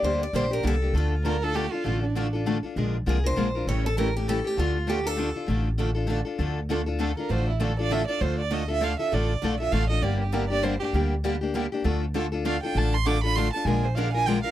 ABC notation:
X:1
M:3/4
L:1/8
Q:"Swing" 1/4=198
K:Dm
V:1 name="Violin"
z6 | z2 B A G F- | F D4 z | z6 |
z6 | z6 | z6 | z4 A B |
c E A d e d | c d _e =e f e | d3 e f _e | d G B d c G |
z6 | z4 f g | a c' d' =b c' a | _a c f a g f |]
V:2 name="Steel-string acoustic guitar"
c d c B A2 | F4 z2 | z6 | z2 _A c3 |
^c A B G A G | F2 G A3 | z6 | z6 |
z6 | z6 | z6 | z6 |
z6 | z6 | z6 | z6 |]
V:3 name="Steel-string acoustic guitar"
[D,G,B,DG] z [D,G,B,DG] [B,DG] [D,G,B,DG] [B,DG] | [D,A,DFA] z [D,A,DFA] [DFA] [D,A,DFA] [DFA] | [D,A,DFA] z [D,A,DFA] [DFA] [D,A,DFA] [DFA] | [F,_A,DFB] z [F,A,DFB] [DFB] [F,A,DFB] [DFB] |
[^C,E,A,^CG] z [C,E,A,CG] [A,CG] [C,E,A,CG] [A,CG] | [D,A,DFA] z [D,A,DFA] [DFA] [D,A,DFA] [DFA] | [D,A,DFA] z [D,A,DFA] [DFA] [D,A,DFA] [DFA] | [D,A,DFA] z [D,A,DFA] [DFA] [D,A,DFA] [DFA] |
[D,A,DFA] z [D,A,DFA] [DFA] [D,A,DFA] [DFA] | [D,A,DFA] z [D,A,DFA] [DFA] [D,A,DFA] [DFA] | [D,A,DFA] z [D,A,DFA] [DFA] [D,A,DFA] [DFA] | [D,G,B,DG] z [D,G,B,DG] [B,DG] [D,G,B,DG] [B,DG] |
[D,G,B,DG] z [D,G,B,DG] [B,DG] [D,G,B,DG] [B,DG] | [D,A,DFA] z [D,A,DFA] [DFA] [D,A,DFA] [DFA] | [D,A,DFA] z [D,A,DFA] [DFA] [D,A,DFA] [DFA] | [F,_A,DFB] z [F,A,DFB] [DFB] [F,A,DFB] [DFB] |]
V:4 name="Steel-string acoustic guitar"
[D,G,B,DG] z [D,G,B,DG] z [D,G,B,DG] z | [D,A,DFA] z [D,A,DFA] z [D,A,DFA] z | [D,A,DFA] z [D,A,DFA] z [D,A,DFA] z | [D,F,B,D_A] z [D,F,B,DA] z [D,F,B,DA] z |
[E,G,^CEA] z [E,G,CEA] z [E,G,CEA] z | [D,A,DFA] z [D,A,DFA] z [D,A,DFA] z | [D,A,DFA] z [D,A,DFA] z [D,A,DFA] z | [D,A,DFA] z [D,A,DFA] z [D,A,DFA] z |
[D,A,DFA] z [D,A,DFA] z [D,A,DFA] z | [D,A,DFA] z [D,A,DFA] z [D,A,DFA] z | [D,A,DFA] z [D,A,DFA] z [D,A,DFA] z | [D,G,B,DG] z [D,G,B,DG] z [D,G,B,DG] z |
[D,G,B,DG] z [D,G,B,DG] z [D,G,B,DG] z | [D,A,DFA] z [D,A,DFA] z [D,A,DFA] z | [D,A,DFA] z [D,A,DFA] z [D,A,DFA] z | [D,F,B,D_A] z [D,F,B,DA] z [D,F,B,DA] z |]
V:5 name="Upright bass" clef=bass
D,,2 B,,,2 C,,2 | D,,6 | A,,,6 | B,,,2 C,,2 B,,,2 |
A,,,6 | D,,6 | A,,,6 | D,,6 |
A,,,6 | D,,6 | A,,,2 B,,,2 A,,,2 | G,,,6 |
D,,6 | D,,6 | A,,,6 | B,,,6 |]